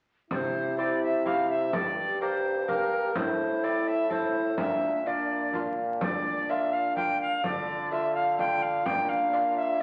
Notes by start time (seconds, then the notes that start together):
0.30 C3 E4 D5, frame drum
0.35 C5
0.78 C4 E4 G4 D5
1.02 E5
1.25 C4 E4 G4 F5, frame drum
1.50 E5
1.73 G2 G4 D5, frame drum
2.21 A#3 G4 A#4 C5
2.67 A#3 G4 A#4, frame drum
3.15 A2 E4 C5, frame drum
3.63 C4 E4 A4 D5
3.87 E5
4.10 C4 E4 A4 C5, frame drum
4.58 A#2 D4 E5, frame drum
5.05 A#3 D4 F4 D5
5.53 A#3 D4 F4, frame drum
6.01 D4 D5, frame drum
6.49 A#3 D4 F4 E5
6.73 F5
6.96 A#3 D4 F4 G5, frame drum
7.21 F5
7.43 D3 F4 D5, frame drum
7.91 A3 D4 F4 E5
8.15 F5
8.39 A3 D4 F4 G5, frame drum
8.62 F5
8.85 A#2 D4 G5, frame drum
9.09 F5
9.33 A#3 D4 F4
9.56 E5